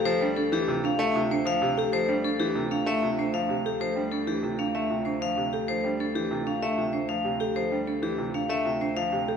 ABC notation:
X:1
M:6/4
L:1/8
Q:1/4=192
K:Dm
V:1 name="Vibraphone"
c z A G z f e z c f z G | c z A G z f e z c f z G | c z A G z f e z c f z G | c z A G z f e z c f z G |
c z A G z f e z c f z G |]
V:2 name="Marimba"
z D D z F D z F D z G A | z D D z F D z F D z G A | z D D z F D z F D z G A | z D D z F D z F D z G A |
z D D z F D z F D z G A |]
V:3 name="Grand piano" clef=bass
F, G, z E, C, z A, C, z F, C, z | F, G, z E, C, z A, C, z F, C, z | F, G, z E, C, z A, C, z F, C, z | F, G, z E, C, z A, C, z F, C, z |
F, G, z E, C, z A, C, z F, C, z |]
V:4 name="Cello" clef=bass
D,,12- | D,,12- | D,,12- | D,,12- |
D,,12 |]